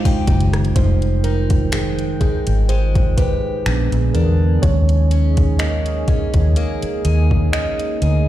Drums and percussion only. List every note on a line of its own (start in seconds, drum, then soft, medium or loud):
0.05 kick loud
0.05 closed hi-hat soft
0.27 kick loud
0.27 closed hi-hat medium
0.41 closed hi-hat medium
0.53 cross-stick medium
0.53 closed hi-hat soft
0.65 closed hi-hat soft
0.76 kick loud
0.76 closed hi-hat medium
1.02 closed hi-hat soft
1.24 closed hi-hat medium
1.50 kick medium
1.50 closed hi-hat medium
1.72 finger snap loud
1.72 closed hi-hat medium
1.99 closed hi-hat soft
2.21 kick medium
2.21 closed hi-hat soft
2.47 closed hi-hat medium
2.69 closed hi-hat medium
2.95 kick medium
2.95 closed hi-hat soft
3.18 kick medium
3.18 closed hi-hat medium
3.66 finger snap loud
3.66 closed hi-hat medium
3.92 closed hi-hat soft
4.15 closed hi-hat medium
4.63 kick loud
4.63 closed hi-hat medium
4.89 closed hi-hat soft
5.11 closed hi-hat medium
5.37 kick medium
5.37 closed hi-hat medium
5.59 finger snap loud
5.59 closed hi-hat medium
5.86 closed hi-hat soft
6.08 kick medium
6.08 closed hi-hat soft
6.34 kick medium
6.34 closed hi-hat medium
6.56 closed hi-hat medium
6.82 closed hi-hat soft
7.05 closed hi-hat medium
7.31 kick medium
7.53 finger snap loud
7.53 closed hi-hat medium
7.79 closed hi-hat soft
8.02 closed hi-hat medium